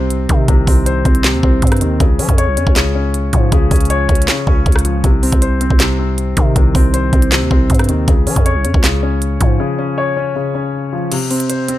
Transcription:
Already playing: 808-style bass C2, grand piano C3 C4 C5
0.10 closed hi-hat
0.29 808-style bass C3, grand piano D#3, kick, closed hi-hat
0.48 808-style bass C2, grand piano C3, kick, closed hi-hat
0.67 808-style bass C2, grand piano C4, kick, open hi-hat
0.86 grand piano C5, closed hi-hat
1.05 808-style bass C2, grand piano C4, kick, closed hi-hat
1.15 closed hi-hat
1.24 grand piano C3, snare, clap, closed hi-hat
1.34 808-style bass D#2
1.43 808-style bass C2, grand piano C4, kick
1.62 808-style bass G2, kick, closed hi-hat
1.67 closed hi-hat
1.72 cross-stick, closed hi-hat
1.77 closed hi-hat
1.81 808-style bass D#2, grand piano D#3, closed hi-hat
2.00 808-style bass C#2, grand piano C#3, kick, closed hi-hat
2.19 808-style bass F3, grand piano C#4, closed hi-hat, open hi-hat
2.29 808-style bass F2, kick, closed hi-hat
2.38 grand piano C#5, closed hi-hat
2.48 808-style bass C2
2.57 808-style bass F2, grand piano C#4, closed hi-hat
2.67 808-style bass C#2, kick
2.76 grand piano C#3, snare, clap, closed hi-hat
2.95 grand piano C#4
3.14 closed hi-hat
3.33 808-style bass G#2, grand piano F3, kick, closed hi-hat
3.52 808-style bass C#2, grand piano C#3, kick, closed hi-hat
3.71 808-style bass C#2, grand piano C#4, kick, closed hi-hat, open hi-hat
3.76 closed hi-hat
3.81 closed hi-hat
3.85 closed hi-hat
3.90 grand piano C#5, closed hi-hat
4.09 808-style bass C#2, grand piano C#4, kick, closed hi-hat
4.15 closed hi-hat
4.22 closed hi-hat
4.28 grand piano C#3, snare, clap, closed hi-hat
4.47 808-style bass C#2, grand piano C#4, kick
4.66 808-style bass C#2, kick, closed hi-hat
4.72 cross-stick, closed hi-hat
4.79 closed hi-hat
4.85 grand piano F3, closed hi-hat
5.04 808-style bass C2, grand piano C3, kick, closed hi-hat
5.23 grand piano C4, closed hi-hat, open hi-hat
5.32 808-style bass C2, kick, closed hi-hat
5.42 grand piano C5, closed hi-hat
5.61 grand piano C4, closed hi-hat
5.70 808-style bass C2, kick
5.80 grand piano C3, snare, clap, closed hi-hat
5.99 grand piano C4
6.18 closed hi-hat
6.37 808-style bass C3, grand piano D#3, kick, closed hi-hat
6.56 808-style bass C2, grand piano C3, kick, closed hi-hat
6.75 808-style bass C2, grand piano C4, kick, open hi-hat
6.94 grand piano C5, closed hi-hat
7.13 808-style bass C2, grand piano C4, kick, closed hi-hat
7.22 closed hi-hat
7.32 grand piano C3, snare, clap, closed hi-hat
7.41 808-style bass D#2
7.51 808-style bass C2, grand piano C4, kick
7.70 808-style bass G2, kick, closed hi-hat
7.75 closed hi-hat
7.79 cross-stick, closed hi-hat
7.84 closed hi-hat
7.89 808-style bass D#2, grand piano D#3, closed hi-hat
8.08 808-style bass C#2, grand piano C#3, kick, closed hi-hat
8.27 808-style bass F3, grand piano C#4, closed hi-hat, open hi-hat
8.36 808-style bass F2, kick, closed hi-hat
8.46 grand piano C#5, closed hi-hat
8.55 808-style bass C2
8.65 808-style bass F2, grand piano C#4, closed hi-hat
8.74 808-style bass C#2, kick
8.84 grand piano C#3, snare, clap, closed hi-hat
9.03 grand piano C#4
9.22 closed hi-hat
9.41 808-style bass G#2, grand piano F3, kick, closed hi-hat
9.60 grand piano C#3
9.79 grand piano C#4
9.98 grand piano C#5
10.17 grand piano C#4
10.36 grand piano C#3
10.55 grand piano C#4
10.93 grand piano F3
11.12 grand piano C3, closed hi-hat, crash
11.31 grand piano C4, closed hi-hat, open hi-hat
11.40 closed hi-hat
11.50 grand piano C5, closed hi-hat
11.68 grand piano C4, closed hi-hat

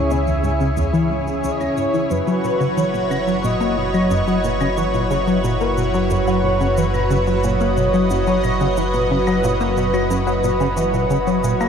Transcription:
Already playing: analog synth bass C#2, analog synth pad C#3 C#4 E4 G#4, synth texture E4 C#5, soft synth lead C#5
0.11 synth arpeggio sound B2, soft synth lead E5, cabasa
0.27 synth arpeggio sound E2, cabasa
0.43 synth arpeggio sound G#2, cabasa
0.60 synth arpeggio sound C#3, cabasa
0.77 synth arpeggio sound E2, cabasa
0.94 synth arpeggio sound E3, cabasa
1.11 synth arpeggio sound G#2
1.27 synth arpeggio sound C#3, cabasa
1.44 synth arpeggio sound C#2, soft synth lead C#5, cabasa
1.51 soft synth lead D#5
1.58 synth arpeggio sound E2, soft synth lead C#5, cabasa, claves
1.77 synth arpeggio sound G#2, cabasa
1.94 synth arpeggio sound E3, cabasa
2.10 analog synth bass F#1, synth arpeggio sound F#2, analog synth pad F#3 F#4 B4 C#5, soft synth lead B4, cabasa
2.27 synth arpeggio sound F#3, cabasa
2.44 synth arpeggio sound A#2, cabasa
2.61 synth arpeggio sound C#3, cabasa
2.77 synth arpeggio sound E3, soft synth lead C#5, cabasa
2.94 synth arpeggio sound A#2, cabasa
3.11 synth arpeggio sound C#3, cabasa, claves
3.28 synth arpeggio sound F#3, cabasa
3.44 synth arpeggio sound A#2, soft synth lead D#5, cabasa
3.61 synth arpeggio sound A#3, cabasa
3.78 synth arpeggio sound B2
3.94 synth arpeggio sound F#3, cabasa, claves
4.11 synth arpeggio sound F#2, cabasa
4.27 synth arpeggio sound F#3, cabasa
4.44 synth arpeggio sound A#2, cabasa
4.61 synth arpeggio sound C#3, cabasa, claves
4.77 synth arpeggio sound E3, soft synth lead C#5, cabasa
4.94 synth arpeggio sound A#2, cabasa
5.11 synth arpeggio sound C#3, cabasa
5.27 synth arpeggio sound F#3, cabasa
5.44 synth arpeggio sound A#2, cabasa
5.61 synth arpeggio sound A#3, cabasa
5.77 synth arpeggio sound B2, cabasa
5.94 synth arpeggio sound F#3, cabasa
6.10 synth arpeggio sound F#2, soft synth lead C#5, cabasa
6.27 synth arpeggio sound F#3, cabasa
6.44 synth arpeggio sound A#2
6.61 synth arpeggio sound C#3, cabasa
6.77 synth arpeggio sound E3, soft synth lead B4, cabasa
6.94 synth arpeggio sound A#2, cabasa, claves
7.11 synth arpeggio sound C#3, cabasa
7.27 synth arpeggio sound F#3, cabasa
7.44 synth arpeggio sound A#2, soft synth lead C#5, analog synth pad D#5, cabasa
7.60 synth arpeggio sound A#3, cabasa
7.77 synth arpeggio sound B2, cabasa
7.94 synth arpeggio sound F#3, cabasa
8.10 synth arpeggio sound F#2, cabasa
8.27 synth arpeggio sound F#3, cabasa
8.44 synth arpeggio sound A#2, cabasa, claves
8.61 synth arpeggio sound C#3, cabasa
8.77 synth arpeggio sound E3, soft synth lead B4, cabasa
8.94 synth arpeggio sound A#2, cabasa
9.11 synth arpeggio sound C#3
9.27 synth arpeggio sound F#3, cabasa, claves
9.44 synth arpeggio sound A#2, cabasa
9.61 synth arpeggio sound A#3, cabasa
9.77 synth arpeggio sound B2, cabasa
9.94 synth arpeggio sound F#3, cabasa, claves
10.10 synth arpeggio sound F#2, cabasa
10.27 synth arpeggio sound F#3, cabasa
10.44 synth arpeggio sound A#2, cabasa
10.60 synth arpeggio sound C#3, cabasa
10.77 synth arpeggio sound E3, cabasa
10.94 synth arpeggio sound A#2, cabasa
11.10 synth arpeggio sound C#3, cabasa
11.27 synth arpeggio sound F#3, cabasa
11.44 synth arpeggio sound A#2, cabasa
11.61 synth arpeggio sound A#3, cabasa, claves

